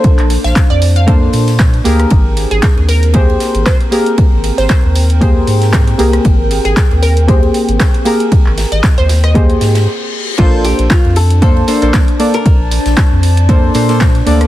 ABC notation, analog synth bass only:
X:1
M:4/4
L:1/16
Q:"Swing 16ths" 1/4=116
K:Bb
V:1 name="Analog synth bass" clef=bass
z B,,, z B,,, z F,,4- F,, B,,4 D,, z | _A,,,3 A,,, z E,,4- E,, z A,,, z4 | z _A,,, z A,,, z E,,4- E,, _A,,4 C,, z | _A,,,3 A,,, z E,,4- E,, z A,,, z4 |
z _A,,, z A,,, z E,,4- E,, _A,,2 z4 | B,,,3 B,,, z F,,4- F,, z B,,, z4 | z B,,, z B,,, z F,,4- F,, B,,4 D,, z |]